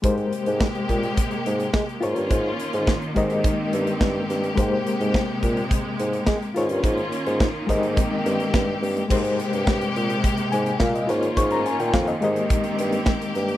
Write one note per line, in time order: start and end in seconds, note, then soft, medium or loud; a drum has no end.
0.02 0.24 G#2 medium
0.02 2.00 C3 medium
0.02 1.97 G#3 medium
0.02 2.00 G#3 medium
0.02 2.00 A#3 medium
0.02 1.98 G4 medium
0.02 2.00 G4 medium
0.02 1.99 A#4 medium
0.02 1.99 C5 medium
0.02 kick medium
0.02 closed hi-hat medium
0.18 closed hi-hat soft
0.33 closed hi-hat medium
0.46 0.67 G#2 medium
0.46 closed hi-hat soft
0.60 kick loud
0.60 snare loud
0.75 closed hi-hat soft
0.89 1.09 A#2 medium
0.89 kick medium
0.89 closed hi-hat soft
1.03 closed hi-hat soft
1.17 kick loud
1.17 closed hi-hat medium
1.31 closed hi-hat soft
1.46 1.66 G#2 medium
1.46 closed hi-hat medium
1.60 closed hi-hat soft
1.74 1.84 G#3 medium
1.74 kick loud
1.74 snare loud
1.89 closed hi-hat soft
2.01 2.12 G#2 medium
2.01 4.55 D#3 medium
2.01 6.52 A#3 medium
2.01 3.15 C#4 medium
2.01 3.13 F4 medium
2.01 3.15 F4 medium
2.01 3.13 A#4 medium
2.01 3.14 C#5 medium
2.01 closed hi-hat medium
2.16 2.26 G2 medium
2.16 closed hi-hat soft
2.31 2.51 G#2 loud
2.31 kick loud
2.31 closed hi-hat medium
2.59 closed hi-hat medium
2.73 2.93 G#2 medium
2.73 closed hi-hat soft
2.87 kick loud
2.87 snare loud
3.02 closed hi-hat soft
3.14 3.46 G#2 medium
3.14 4.54 G#3 medium
3.14 4.56 C4 medium
3.14 4.54 G4 medium
3.14 6.53 G4 medium
3.14 4.55 A#4 medium
3.14 4.56 D#5 medium
3.14 kick medium
3.14 closed hi-hat soft
3.30 closed hi-hat soft
3.44 kick loud
3.44 closed hi-hat medium
3.73 3.93 G2 loud
3.73 closed hi-hat medium
3.87 closed hi-hat soft
4.01 4.21 G2 medium
4.01 kick loud
4.01 snare loud
4.29 4.49 G2 medium
4.29 snare soft
4.29 closed hi-hat medium
4.44 closed hi-hat soft
4.55 4.78 G#2 loud
4.55 6.54 C3 medium
4.55 6.51 G#3 medium
4.55 6.54 G#3 medium
4.55 6.51 G4 medium
4.55 6.52 A#4 medium
4.55 6.52 C5 medium
4.55 kick loud
4.55 closed hi-hat medium
4.87 closed hi-hat medium
5.00 5.20 G#2 medium
5.00 closed hi-hat soft
5.14 kick loud
5.14 snare loud
5.43 5.63 A#2 medium
5.43 kick medium
5.43 closed hi-hat medium
5.57 closed hi-hat soft
5.71 kick loud
5.71 closed hi-hat medium
5.99 6.19 G#2 medium
5.99 closed hi-hat medium
6.13 closed hi-hat soft
6.26 6.37 G#3 loud
6.26 kick loud
6.26 snare loud
6.42 closed hi-hat soft
6.54 6.66 G#2 medium
6.54 9.08 D#3 medium
6.54 9.08 A#3 medium
6.54 7.68 C#4 medium
6.54 7.66 F4 medium
6.54 7.68 F4 medium
6.54 7.67 A#4 medium
6.54 7.68 C#5 medium
6.54 snare soft
6.54 closed hi-hat medium
6.69 6.80 G2 medium
6.69 closed hi-hat soft
6.84 7.04 G#2 medium
6.84 kick loud
6.84 closed hi-hat medium
6.97 closed hi-hat soft
7.12 closed hi-hat medium
7.26 7.47 G#2 medium
7.26 closed hi-hat soft
7.40 kick loud
7.40 snare loud
7.67 7.99 G#2 medium
7.67 9.07 G#3 medium
7.67 9.09 C4 medium
7.67 9.07 G4 medium
7.67 9.09 G4 medium
7.67 9.08 A#4 medium
7.67 9.08 D#5 medium
7.67 kick medium
7.67 closed hi-hat medium
7.83 closed hi-hat soft
7.97 kick loud
7.97 closed hi-hat medium
8.26 8.46 G2 loud
8.26 closed hi-hat medium
8.40 closed hi-hat soft
8.54 8.74 G2 loud
8.54 kick loud
8.54 snare loud
8.82 9.02 G2 loud
8.82 open hi-hat medium
8.96 closed hi-hat soft
9.08 9.40 G#2 loud
9.08 11.07 C3 medium
9.08 11.04 G#3 medium
9.08 11.07 G#3 medium
9.08 13.57 A#3 medium
9.08 11.04 G4 medium
9.08 11.07 G4 medium
9.08 11.05 A#4 medium
9.08 11.05 C5 medium
9.08 kick medium
9.08 crash medium
9.25 closed hi-hat soft
9.40 closed hi-hat medium
9.53 9.63 G2 medium
9.53 closed hi-hat soft
9.67 9.87 G2 medium
9.67 kick loud
9.67 snare loud
9.81 closed hi-hat soft
9.96 10.16 A#2 medium
9.96 closed hi-hat medium
10.10 closed hi-hat soft
10.24 kick loud
10.24 closed hi-hat medium
10.37 closed hi-hat soft
10.52 10.72 G#2 medium
10.52 10.79 G#5 medium
10.52 closed hi-hat medium
10.66 closed hi-hat soft
10.80 11.00 A#2 loud
10.80 10.94 F5 medium
10.80 kick loud
10.80 snare loud
10.95 11.21 D#5 medium
10.95 closed hi-hat soft
11.07 11.29 G#2 loud
11.07 13.57 D#3 medium
11.07 12.21 C#4 medium
11.07 12.19 F4 medium
11.07 12.21 F4 medium
11.07 12.20 A#4 medium
11.07 12.20 C#5 medium
11.07 snare soft
11.07 closed hi-hat medium
11.23 closed hi-hat soft
11.37 11.67 G#2 medium
11.37 11.50 C#6 medium
11.37 kick medium
11.37 closed hi-hat medium
11.51 11.65 A#5 medium
11.51 closed hi-hat soft
11.66 11.79 G#5 medium
11.66 closed hi-hat medium
11.80 11.89 A#2 medium
11.80 11.93 G5 medium
11.80 closed hi-hat soft
11.94 12.14 F2 medium
11.94 12.07 F5 medium
11.94 kick loud
11.94 snare loud
12.07 12.23 D#5 medium
12.07 closed hi-hat soft
12.21 12.42 G#2 medium
12.21 13.57 G#3 medium
12.21 13.57 C4 medium
12.21 13.57 G4 medium
12.21 13.57 A#4 medium
12.21 13.57 D#5 medium
12.21 closed hi-hat medium
12.36 closed hi-hat soft
12.50 kick loud
12.50 closed hi-hat medium
12.64 closed hi-hat soft
12.79 12.99 G2 medium
12.79 closed hi-hat medium
12.92 closed hi-hat soft
13.06 kick loud
13.06 snare loud
13.22 closed hi-hat medium
13.35 13.55 G2 medium
13.35 snare soft
13.35 closed hi-hat medium
13.48 closed hi-hat soft